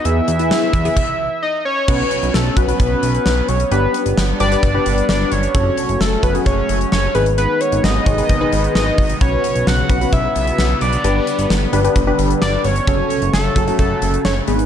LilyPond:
<<
  \new Staff \with { instrumentName = "Analog synth lead" } { \time 4/4 \key b \mixolydian \tempo 4 = 131 e''2. dis''8 cis''8~ | cis''4 a'8 b'2 cis''8 | b'4 r8 d''4. d''8 cis''8~ | cis''4 a'8 b'8 cis''4 cis''8 b'8 |
b'8 cis''8 dis''2 dis''4 | cis''4 fis''4 e''4. d''8~ | d''4 r2 d''8 cis''8~ | cis''4 a'4 a'4 cis''8 b'8 | }
  \new Staff \with { instrumentName = "Analog polysynth" } { \time 4/4 \key b \mixolydian <b e' gis'>8 r16 <b e' gis'>8. r16 <b e' gis'>16 r2 | <cis' fis' b'>4 r8 <cis' fis' b'>16 <cis' fis' b'>4. r8. | <d' g' b'>4 r8 <d' g' b'>16 <d' g' b'>16 r16 <d' g' b'>4~ <d' g' b'>16 r8 | <cis' fis' a'>4 r8 <cis' fis' a'>16 <cis' fis' gis'>4. r16 <dis' gis' b'>8~ |
<dis' gis' b'>4 r8 <dis' gis' cis''>16 <dis' gis' b'>16 r16 <dis' gis' b'>4~ <dis' gis' b'>16 r8 | <cis' fis' b'>4 r8 <cis' fis' b'>16 <cis' fis' b'>4. r8. | <d' g' b'>4 r8 <d' g' b'>16 <d' g' b'>16 r16 <d' g' b'>4~ <d' g' b'>16 r8 | <cis' fis' a'>4 r8 <cis' fis' a'>16 <cis' fis' a'>4. r16 <b dis' gis'>8 | }
  \new Staff \with { instrumentName = "Analog synth pad" } { \clef bass \time 4/4 \key b \mixolydian << { <e b'>2 r2 | cis'1 | d'1 | cis'2.~ cis'8 b8~ |
b1 | b1~ | b1 | a2.~ a8 b8 | } \\ { <e' gis'>2 r2 | <fis b>1 | <g b>1 | <fis a>2.~ <fis a>8 <dis gis>8~ |
<dis gis>1 | <cis fis>1 | <d g>1 | <cis fis>2.~ <cis fis>8 <dis gis>8 | } >> }
  \new Staff \with { instrumentName = "Analog synth bass" } { \clef bass \time 4/4 \key b \mixolydian e,8 e,8. r16 e,8 r2 | b,,8 r16 b,,16 b,,8 b,,8 b,,8 b,,8 b,,8 b,,8 | g,,8 r16 g,,16 g,,8 g,,8 g,,8 g,,8 g,,8 g,,8 | fis,,8 r16 fis,,16 fis,,8 fis,,8 fis,,8 fis,,8 fis,,8 gis,,8~ |
gis,,8 r16 gis,,16 gis,,8 gis,,8 gis,,8 gis,,8 gis,,8 gis,,8 | b,,8 r16 b,,16 b,,8 b,,8 b,,8 b,,8 b,,8 b,,8 | g,,8 r16 g,,16 g,,8 g,,8 g,,8 g,,8 g,,8 g,,8 | fis,,8 r16 fis,,16 fis,,8 fis,,8 fis,,8 fis,,8 fis,,8 gis,,8 | }
  \new DrumStaff \with { instrumentName = "Drums" } \drummode { \time 4/4 hh8 hh16 hh16 sn8 <hh bd>16 hh16 <cymc bd>4 r4 | <cymc bd>8 hh16 hh16 sn8 <hh bd>16 hh16 <hh bd>8 hh16 hh16 sn8 hh16 hh16 | hh8 hh16 hh16 sn8 hh16 hh16 <hh bd>8 hh16 hh16 sn8 hh16 hh16 | <hh bd>8 hh16 hh16 sn8 <hh bd>16 hh16 <hh bd>8 hh16 hh16 sn8 hh16 hh16 |
hh8 hh16 hh16 sn8 <hh bd>16 hh16 <hh bd>8 hh16 hh16 sn8 <hho bd>16 hh16 | <hh bd>8 hh16 hh16 sn8 <hh bd>16 hh16 <hh bd>8 hh16 hh16 sn8 hh16 hh16 | hh8 hh16 hh16 sn8 hh16 hh16 <hh bd>8 hh16 hh16 sn8 hh16 hh16 | <hh bd>8 hh16 hh16 sn8 <hh bd>16 hh16 <hh bd>8 hh16 hh16 sn8 hh16 hh16 | }
>>